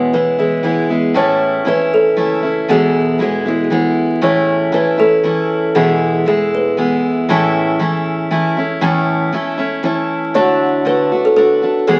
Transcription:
Already playing: upright bass E1, steel-string acoustic guitar E2 B2 E3 G#3 B3 E4, kalimba B4
0.13 steel-string acoustic guitar E3 G#3 B3 E4, kalimba B4
0.38 steel-string acoustic guitar E3 G#3 B3 E4, kalimba G#4
0.63 steel-string acoustic guitar E3 G#3 B3 E4, kalimba E4
0.89 steel-string acoustic guitar E3 G#3 B3 E4
1.14 upright bass A1, steel-string acoustic guitar A2 E3 A3 C#4 E4, kalimba C#5
1.65 upright bass G#1, steel-string acoustic guitar E3 A3 C#4 E4, kalimba B4
1.94 kalimba A4
2.16 upright bass F#1, steel-string acoustic guitar E3 A3 C#4 E4
2.42 steel-string acoustic guitar A3 C#4 E4
2.68 upright bass E1, steel-string acoustic guitar E2 B2 E3 G#3 B3 E4, kalimba G#4
3.19 steel-string acoustic guitar E3 G#3 B3 E4, kalimba F#4
3.45 steel-string acoustic guitar E3 G#3 B3 E4, kalimba E4
3.64 kalimba F#4
3.70 steel-string acoustic guitar E3 G#3 B3 E4, kalimba E4
4.21 upright bass A1, steel-string acoustic guitar A2 E3 A3 C#4 E4, kalimba C#5
4.72 steel-string acoustic guitar E3 A3 C#4 E4, kalimba B4
4.98 steel-string acoustic guitar A3 C#4 E4, kalimba A4
5.23 steel-string acoustic guitar E3 A3 C#4 E4
5.75 upright bass E1, steel-string acoustic guitar E2 B2 E3 G#3 B3 E4, kalimba G#4
6.26 steel-string acoustic guitar E3 G#3 B3 E4, kalimba G#4
6.55 kalimba B4
6.77 steel-string acoustic guitar E3 G#3 B3 E4
7.29 upright bass A1, steel-string acoustic guitar A2 E3 A3 C#4 E4
7.79 steel-string acoustic guitar E3 A3 C#4 E4
8.31 steel-string acoustic guitar E3 A3 C#4 E4
8.57 steel-string acoustic guitar A3 C#4 E4
8.81 upright bass E2, steel-string acoustic guitar A2 E3 A3 C#4 E4
9.32 steel-string acoustic guitar E3 A3 C#4 E4
9.58 steel-string acoustic guitar A3 C#4 E4
9.83 steel-string acoustic guitar E3 A3 C#4 E4, kalimba E4
10.34 upright bass D2, steel-string acoustic guitar D3 A3 D4 F#4, kalimba C#5
10.85 steel-string acoustic guitar D3 A3 D4 F#4, kalimba B4
11.12 steel-string acoustic guitar A3 D4 F#4
11.25 kalimba A4
11.36 steel-string acoustic guitar D3 A3 D4 F#4, kalimba A4
11.62 steel-string acoustic guitar A3 D4 F#4
11.87 steel-string acoustic guitar E2 B2 E3 G#3 B3 G#4, upright bass E2, kalimba G#4

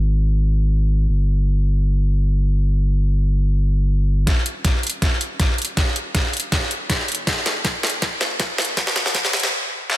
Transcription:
Already playing: sub bass G#1
1.08 sub bass G1
4.27 sub bass D#1, kick, snare, closed hi-hat
4.46 closed hi-hat
4.65 kick, snare, closed hi-hat
4.83 closed hi-hat
4.87 closed hi-hat
4.90 closed hi-hat
5.02 kick, snare, closed hi-hat
5.21 closed hi-hat
5.40 kick, snare, closed hi-hat
5.58 closed hi-hat
5.62 closed hi-hat
5.65 closed hi-hat
5.77 kick, snare, closed hi-hat
5.96 closed hi-hat
6.15 kick, snare, closed hi-hat
6.33 closed hi-hat
6.37 closed hi-hat
6.40 closed hi-hat
6.52 kick, snare, closed hi-hat
6.71 closed hi-hat
6.90 kick, snare, closed hi-hat
7.08 sub bass F#1, closed hi-hat
7.12 closed hi-hat
7.15 closed hi-hat
7.27 kick, snare, closed hi-hat
7.46 snare, closed hi-hat
7.65 kick, snare, closed hi-hat
7.83 snare, closed hi-hat
7.87 closed hi-hat
7.90 closed hi-hat
8.02 kick, snare, closed hi-hat
8.21 snare, closed hi-hat
8.40 kick, snare, closed hi-hat
8.58 snare, closed hi-hat
8.62 closed hi-hat
8.65 closed hi-hat
8.77 kick, snare, closed hi-hat
8.87 snare
8.96 snare, closed hi-hat
9.06 snare
9.15 kick, snare, closed hi-hat
9.25 snare
9.33 snare, closed hi-hat
9.37 closed hi-hat
9.40 snare, closed hi-hat
9.90 snare

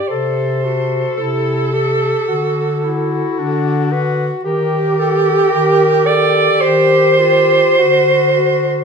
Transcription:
Already playing: clarinet G4
0.08 bass clarinet C3, tenor saxophone A4, clarinet A4, alto saxophone C5
0.64 clarinet F#4, tenor saxophone A4
1.17 bass clarinet C3, clarinet E4, alto saxophone A4
1.73 clarinet G4, tenor saxophone A4
2.27 bass clarinet D3, tenor saxophone F#4, clarinet F#4
2.83 clarinet E4, tenor saxophone F#4
3.37 bass clarinet D3, clarinet D4
3.91 tenor saxophone F#4, clarinet B4
4.44 bass clarinet D#3, tenor saxophone G4, alto saxophone G4, clarinet A#4
4.98 tenor saxophone G4, clarinet A4
5.51 bass clarinet D#3, clarinet A#4
6.07 tenor saxophone G4, clarinet A4, alto saxophone D5
6.61 bass clarinet D#3, clarinet G4, tenor saxophone G4, alto saxophone C5
7.19 clarinet F4, tenor saxophone G4
7.78 bass clarinet D3, tenor saxophone F#4, clarinet F#4
8.38 tenor saxophone F#4

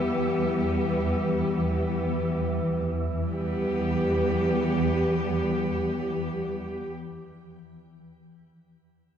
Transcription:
Already playing: synth drone E2 E3, cello section E3 G3 B3 G4, synth texture E5
2.88 synth drone E2 E3, cello section E3
3.05 cello section G3
3.18 cello section B3
3.32 cello section G4

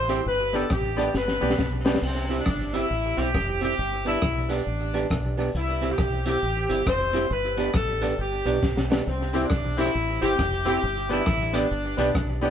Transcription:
Already playing: fingered electric bass A1, horn section C5
0.08 hollow-body jazz guitar C4 E4 G4, upright piano C4 E4 G4, closed hi-hat
0.26 fingered electric bass G1, horn section B4
0.53 upright piano B3 D4 G4, hollow-body jazz guitar B3 D4 G4, horn section A4, closed hi-hat
0.70 fingered electric bass A1, horn section G4, kick, cross-stick
0.97 upright piano B3 D4 G4, hollow-body jazz guitar B3 D4 G4, closed hi-hat
1.14 fingered electric bass G1, horn section B4, snare
1.28 snare
1.41 fingered electric bass B1, upright piano B3 D4 G4, hollow-body jazz guitar B3 D4 G4
1.50 snare
1.59 fingered electric bass B1, kick, snare
1.84 upright piano B3 D4 G4, hollow-body jazz guitar B3 D4 G4, snare
1.94 snare
2.02 fingered electric bass C2, horn section C4, crash
2.29 hollow-body jazz guitar C4 E4 G4, closed hi-hat
2.38 horn section D4
2.46 fingered electric bass G1, kick, cross-stick
2.73 hollow-body jazz guitar C4 E4 G4, horn section E4, closed hi-hat
2.91 fingered electric bass A1
3.17 fingered electric bass B1, hollow-body jazz guitar C4 E4 G4, horn section G4, closed hi-hat
3.34 fingered electric bass F1, kick, cross-stick
3.61 hollow-body jazz guitar C4 E4 G4, horn section G4, closed hi-hat
3.79 fingered electric bass G1
4.05 hollow-body jazz guitar B3 D4 G4, horn section E4, closed hi-hat
4.22 fingered electric bass B1, kick, cross-stick
4.49 hollow-body jazz guitar B3 D4 G4, horn section D4, closed hi-hat
4.67 fingered electric bass A1
4.94 hollow-body jazz guitar B3 D4 G4, closed hi-hat
5.11 fingered electric bass B1, kick, cross-stick
5.37 hollow-body jazz guitar B3 D4 G4, open hi-hat
5.55 fingered electric bass C2, horn section E4, hi-hat pedal
5.81 hollow-body jazz guitar C4 E4 G4, closed hi-hat
5.91 horn section G4
5.98 fingered electric bass B1, kick, cross-stick
6.26 hollow-body jazz guitar C4 E4 G4, horn section G4, closed hi-hat
6.43 fingered electric bass A1
6.69 fingered electric bass G1, hollow-body jazz guitar C4 E4 G4, closed hi-hat
6.87 fingered electric bass F1, horn section C5, kick, cross-stick
7.13 hollow-body jazz guitar C4 E4 G4, closed hi-hat
7.30 fingered electric bass G1, horn section B4
7.57 hollow-body jazz guitar B3 D4 G4, closed hi-hat
7.74 fingered electric bass A1, horn section A4, kick, cross-stick
8.01 hollow-body jazz guitar B3 D4 G4, closed hi-hat
8.19 fingered electric bass G1, horn section G4
8.45 fingered electric bass B1, hollow-body jazz guitar B3 D4 G4, closed hi-hat
8.63 fingered electric bass B1, kick, snare
8.77 snare
8.90 hollow-body jazz guitar B3 D4 G4, snare
9.07 fingered electric bass C2, horn section C4
9.33 upright piano C4 E4 G4, hollow-body jazz guitar C4 E4 G4, closed hi-hat
9.43 horn section D4
9.50 fingered electric bass B1, kick, cross-stick
9.77 upright piano C4 E4 G4, hollow-body jazz guitar C4 E4 G4, horn section E4, closed hi-hat
9.86 cross-stick
9.95 fingered electric bass A1
10.21 fingered electric bass G1, hollow-body jazz guitar C4 E4 G4, upright piano C4 E4 G4, horn section G4, closed hi-hat
10.39 fingered electric bass F1, kick, cross-stick
10.65 upright piano C4 E4 G4, hollow-body jazz guitar C4 E4 G4, horn section G4, closed hi-hat
10.83 fingered electric bass G1
11.09 upright piano B3 D4 G4, hollow-body jazz guitar B3 D4 G4, horn section E4, closed hi-hat
11.26 fingered electric bass A1, kick, cross-stick
11.53 upright piano B3 D4 G4, hollow-body jazz guitar B3 D4 G4, horn section D4, closed hi-hat
11.71 fingered electric bass G1
11.97 fingered electric bass B1, hollow-body jazz guitar B3 D4 G4, upright piano B3 D4 G4, closed hi-hat
12.15 fingered electric bass B1, kick, cross-stick
12.41 upright piano B3 D4 G4, hollow-body jazz guitar B3 D4 G4, open hi-hat

